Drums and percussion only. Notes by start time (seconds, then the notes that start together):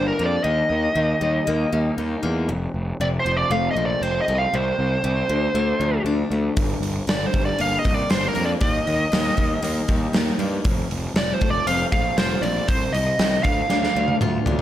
6.57 kick, open hi-hat
6.83 open hi-hat
7.09 snare, open hi-hat
7.34 kick, open hi-hat
7.60 open hi-hat
7.85 kick, open hi-hat
8.10 snare, open hi-hat
8.36 open hi-hat
8.61 kick, open hi-hat
8.87 open hi-hat
9.13 snare, open hi-hat
9.38 kick, open hi-hat
9.64 open hi-hat
9.89 kick, open hi-hat
10.14 snare, open hi-hat
10.40 open hi-hat
10.65 kick, open hi-hat
10.91 open hi-hat
11.16 snare, open hi-hat
11.42 kick, open hi-hat
11.68 open hi-hat
11.92 kick, open hi-hat
12.18 snare, open hi-hat
12.43 open hi-hat
12.69 kick, open hi-hat
12.94 open hi-hat
13.19 snare, open hi-hat
13.45 kick, open hi-hat
13.70 snare
13.83 snare
14.08 high tom
14.21 mid tom
14.46 floor tom